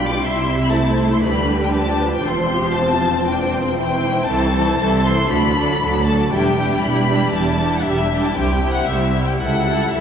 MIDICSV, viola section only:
0, 0, Header, 1, 2, 480
1, 0, Start_track
1, 0, Tempo, 511945
1, 194, Time_signature, 4, 2, 24, 8
1, 9380, End_track
2, 0, Start_track
2, 0, Title_t, "Viola section"
2, 0, Program_c, 0, 48
2, 0, Note_on_c, 0, 55, 40
2, 0, Note_on_c, 0, 62, 44
2, 180, Note_off_c, 0, 62, 0
2, 190, Note_on_c, 0, 64, 43
2, 655, Note_off_c, 0, 55, 0
2, 679, Note_on_c, 0, 57, 42
2, 1141, Note_off_c, 0, 64, 0
2, 1156, Note_on_c, 0, 62, 39
2, 1162, Note_on_c, 0, 55, 38
2, 1163, Note_off_c, 0, 57, 0
2, 1623, Note_off_c, 0, 62, 0
2, 1635, Note_on_c, 0, 53, 47
2, 1635, Note_on_c, 0, 62, 44
2, 1636, Note_off_c, 0, 55, 0
2, 2109, Note_off_c, 0, 62, 0
2, 2128, Note_on_c, 0, 60, 43
2, 2594, Note_off_c, 0, 60, 0
2, 2606, Note_on_c, 0, 60, 42
2, 3072, Note_off_c, 0, 60, 0
2, 3081, Note_on_c, 0, 62, 46
2, 3310, Note_on_c, 0, 60, 52
2, 3319, Note_off_c, 0, 62, 0
2, 3551, Note_off_c, 0, 53, 0
2, 3551, Note_off_c, 0, 60, 0
2, 3560, Note_on_c, 0, 52, 45
2, 3562, Note_on_c, 0, 60, 41
2, 4016, Note_off_c, 0, 52, 0
2, 4025, Note_on_c, 0, 64, 51
2, 4026, Note_off_c, 0, 60, 0
2, 4027, Note_on_c, 0, 52, 50
2, 4257, Note_off_c, 0, 64, 0
2, 4263, Note_off_c, 0, 52, 0
2, 4268, Note_on_c, 0, 64, 46
2, 4274, Note_on_c, 0, 52, 42
2, 4496, Note_off_c, 0, 52, 0
2, 4499, Note_off_c, 0, 64, 0
2, 4507, Note_on_c, 0, 52, 44
2, 4511, Note_on_c, 0, 64, 48
2, 4738, Note_off_c, 0, 64, 0
2, 4739, Note_off_c, 0, 52, 0
2, 4749, Note_on_c, 0, 64, 42
2, 4750, Note_on_c, 0, 52, 46
2, 4980, Note_on_c, 0, 62, 43
2, 4982, Note_on_c, 0, 54, 44
2, 4983, Note_off_c, 0, 64, 0
2, 4984, Note_off_c, 0, 52, 0
2, 5215, Note_off_c, 0, 54, 0
2, 5217, Note_off_c, 0, 62, 0
2, 5226, Note_on_c, 0, 54, 47
2, 5229, Note_on_c, 0, 62, 42
2, 5446, Note_off_c, 0, 54, 0
2, 5448, Note_off_c, 0, 62, 0
2, 5457, Note_on_c, 0, 54, 44
2, 5459, Note_on_c, 0, 62, 45
2, 5684, Note_off_c, 0, 54, 0
2, 5685, Note_off_c, 0, 62, 0
2, 5695, Note_on_c, 0, 54, 44
2, 5696, Note_on_c, 0, 62, 45
2, 5923, Note_off_c, 0, 62, 0
2, 5932, Note_off_c, 0, 54, 0
2, 5935, Note_on_c, 0, 62, 52
2, 5937, Note_on_c, 0, 55, 49
2, 6166, Note_off_c, 0, 62, 0
2, 6170, Note_off_c, 0, 55, 0
2, 6177, Note_on_c, 0, 62, 45
2, 6181, Note_on_c, 0, 55, 47
2, 6395, Note_off_c, 0, 62, 0
2, 6400, Note_off_c, 0, 55, 0
2, 6407, Note_on_c, 0, 62, 44
2, 6412, Note_on_c, 0, 55, 44
2, 6641, Note_off_c, 0, 55, 0
2, 6642, Note_off_c, 0, 62, 0
2, 6652, Note_on_c, 0, 55, 49
2, 6653, Note_on_c, 0, 62, 47
2, 6877, Note_off_c, 0, 62, 0
2, 6878, Note_off_c, 0, 55, 0
2, 6888, Note_on_c, 0, 62, 44
2, 6890, Note_on_c, 0, 55, 44
2, 7123, Note_off_c, 0, 62, 0
2, 7126, Note_off_c, 0, 55, 0
2, 7135, Note_on_c, 0, 62, 44
2, 7137, Note_on_c, 0, 55, 41
2, 7367, Note_off_c, 0, 62, 0
2, 7368, Note_off_c, 0, 55, 0
2, 7378, Note_on_c, 0, 62, 45
2, 7379, Note_on_c, 0, 55, 44
2, 7600, Note_off_c, 0, 55, 0
2, 7601, Note_off_c, 0, 62, 0
2, 7611, Note_on_c, 0, 55, 43
2, 7612, Note_on_c, 0, 62, 43
2, 7836, Note_off_c, 0, 55, 0
2, 7847, Note_on_c, 0, 55, 50
2, 7849, Note_on_c, 0, 60, 49
2, 7851, Note_off_c, 0, 62, 0
2, 8078, Note_off_c, 0, 55, 0
2, 8080, Note_off_c, 0, 60, 0
2, 8090, Note_on_c, 0, 55, 42
2, 8091, Note_on_c, 0, 60, 45
2, 8325, Note_off_c, 0, 60, 0
2, 8329, Note_off_c, 0, 55, 0
2, 8336, Note_on_c, 0, 60, 41
2, 8340, Note_on_c, 0, 55, 43
2, 8569, Note_off_c, 0, 60, 0
2, 8571, Note_off_c, 0, 55, 0
2, 8581, Note_on_c, 0, 60, 37
2, 8583, Note_on_c, 0, 55, 44
2, 8813, Note_off_c, 0, 55, 0
2, 8818, Note_off_c, 0, 60, 0
2, 8824, Note_on_c, 0, 55, 39
2, 8825, Note_on_c, 0, 64, 37
2, 9049, Note_off_c, 0, 55, 0
2, 9050, Note_off_c, 0, 64, 0
2, 9060, Note_on_c, 0, 55, 39
2, 9061, Note_on_c, 0, 64, 39
2, 9292, Note_off_c, 0, 64, 0
2, 9294, Note_off_c, 0, 55, 0
2, 9303, Note_on_c, 0, 64, 38
2, 9305, Note_on_c, 0, 55, 41
2, 9380, Note_off_c, 0, 55, 0
2, 9380, Note_off_c, 0, 64, 0
2, 9380, End_track
0, 0, End_of_file